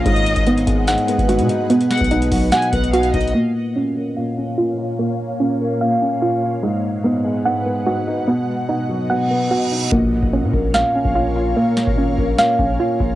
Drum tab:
HH |x--x--x--x--x--x--x-----x--x--x--x--x--x--x-----|x--x--x-x-x-x--x--o-----x--x--x--x--x--x--x-x-x-|------------------------------------------------|------------------------------------------------|
SD |------------------------o-----------------------|------o-----------------o-----------------------|------------------------------------------------|------------------------------------------------|
BD |o--------o--------o--------------o--------------|---------o--------o-----------o-----------o-----|------------------------------------------------|------------------------------------------------|

HH |------------------------------------------------|------------------------------------------------|------------------------------------------------|------------------------------------------------|
SD |------------------------------------------------|------------------------------------------------|------------------------o-----------------------|------o-----------------o-----------------------|
BD |------------------------------------------------|------------------------------------------------|o--------o--------o--------------o--------------|---------o--------o-----------o-----------o-----|